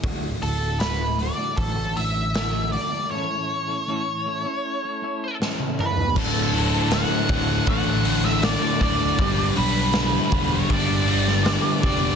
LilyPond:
<<
  \new Staff \with { instrumentName = "Lead electric guitar" } { \time 4/4 \key d \major \tempo 4 = 79 r8 a'8 b'8 d''8 a'8 e''4 d''8 | cis''2. r8 b'8 | a'4 fis''4 fis''8. e''16 d''8 d''8~ | d''8 b'4~ b'16 cis''16 d''4. d''8 | }
  \new Staff \with { instrumentName = "Clean electric guitar" } { \time 4/4 \key d \major <d, a, d a fis'>8. <d a fis'>16 <a, d a fis'>8 <a, d a fis'>16 <d a fis'>8 <d a fis'>16 <a, d a fis'>8 <d, a, d a fis'>8 <a, d a fis'>8 | <a, e a cis' e' a'>8. <a cis' e' a'>16 <a, e a cis' e' a'>8 <a cis' e' a'>16 <a cis' e' a'>8 <a cis' e' a'>16 <a cis' e' a'>8 <a, e a cis' e' a'>8 <a cis' e' a'>8 | r1 | r1 | }
  \new Staff \with { instrumentName = "Distorted electric guitar" } { \clef bass \time 4/4 \key d \major r1 | r1 | <d, a, d>8 <d, a, d>8 <d, a, d>8 <d, a, d>8 <d, a, d>8 <d, a, d>8 <d, a, d>8 <d, a, d>8 | <g, d g>8 <g, d g>8 <g, d g>8 <g, d g>8 <g, d g>8 <g, d g>8 <g, d g>8 <g, d g>8 | }
  \new Staff \with { instrumentName = "Overdriven electric guitar" } { \clef bass \time 4/4 \key d \major r1 | r1 | <d, a, d>8 <d, a, d>8 <d, a, d>8 <d, a, d>8 <d, a, d>8 <d, a, d>8 <d, a, d>8 <d, a, d>8 | <g, d g>8 <g, d g>8 <g, d g>8 <g, d g>8 <g, d g>8 <g, d g>8 <g, d g>8 <g, d g>8 | }
  \new Staff \with { instrumentName = "Picked electric bass" } { \clef bass \time 4/4 \key d \major d,,8 d,,4. a,,2 | r1 | d,,4. d,,8 a,,4. d,,8 | g,,8 b,,4 e,,8 g,,4. f,,8 | }
  \new DrumStaff \with { instrumentName = "Drums" } \drummode { \time 4/4 <hho bd>8 hho8 <hho sn>8 hho8 <hho bd>8 hho8 <hho sn>8 hho8 | r4 r4 r4 sn16 tommh16 toml16 tomfh16 | <cymc bd>8 hho8 <hho sn>8 <hho bd>8 <hho bd>8 hho16 sn16 <hho sn>8 <hho bd>8 | <hho bd>8 hho8 <hho sn>8 <hho bd>8 <hho bd>8 hho16 sn16 <hho sn>8 <hho bd>8 | }
>>